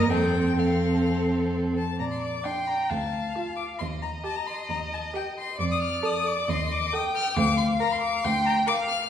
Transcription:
Already playing: D#5
0.10 F2 C4 A4 G5
0.57 C4 A4 F5
1.77 A5
1.99 A#2 D5 A#5
2.12 C6
2.22 D6
2.44 D4 G5 C6
2.67 A#5
2.89 D2 F5 A5
3.36 F4
3.56 D6
3.79 D#2 D#5 C6
4.02 A#5
4.24 G4 A5
4.37 A#5
4.47 C6
4.69 D#2 A#5
4.93 A5
5.14 G4 G5
5.38 C6
5.59 F2 D5 D6
5.72 D#6
5.83 F6
6.04 A4 D#6
6.27 D6
6.48 D#2 D#5 C6
6.72 D6
6.93 A4 G5 D#6
7.16 F6
7.37 D2 F5 D6
7.58 C6
7.80 A#4 A#5
7.92 C6
8.01 D6
8.24 D2 G5 C6
8.46 A#5
8.67 A#4 F5 D6
8.88 F6

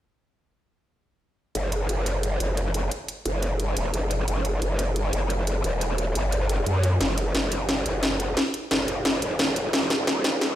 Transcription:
1.55 F#1, closed hi-hat
1.72 closed hi-hat
1.89 F#1, closed hi-hat
2.06 closed hi-hat
2.23 closed hi-hat
2.40 F#1, closed hi-hat
2.57 closed hi-hat
2.74 closed hi-hat
2.91 closed hi-hat
3.08 closed hi-hat
3.25 F#1, closed hi-hat
3.43 closed hi-hat
3.60 closed hi-hat
3.77 E1, closed hi-hat
3.94 F#1, closed hi-hat
4.11 closed hi-hat
4.28 F#1, closed hi-hat
4.45 closed hi-hat
4.62 F#1, closed hi-hat
4.79 closed hi-hat
4.96 closed hi-hat
5.13 F#1, closed hi-hat
5.30 closed hi-hat
5.47 closed hi-hat
5.64 E1, closed hi-hat
5.81 closed hi-hat
5.98 closed hi-hat
6.15 G1, closed hi-hat
6.32 closed hi-hat
6.49 closed hi-hat
6.66 F#2, closed hi-hat
6.84 closed hi-hat
7.01 F#1, snare, closed hi-hat
7.18 closed hi-hat
7.35 F#1, snare, closed hi-hat
7.52 closed hi-hat
7.69 snare, closed hi-hat
7.86 F#1, closed hi-hat
8.03 snare, closed hi-hat
8.20 closed hi-hat
8.37 snare, closed hi-hat
8.54 closed hi-hat
8.71 F#1, snare, closed hi-hat
8.88 closed hi-hat
9.05 snare, closed hi-hat
9.22 E1, closed hi-hat
9.39 F#1, snare, closed hi-hat
9.56 closed hi-hat
9.73 F#1, snare, closed hi-hat
9.90 snare, closed hi-hat
10.07 F#1, snare, closed hi-hat
10.24 snare, closed hi-hat
10.41 snare, closed hi-hat

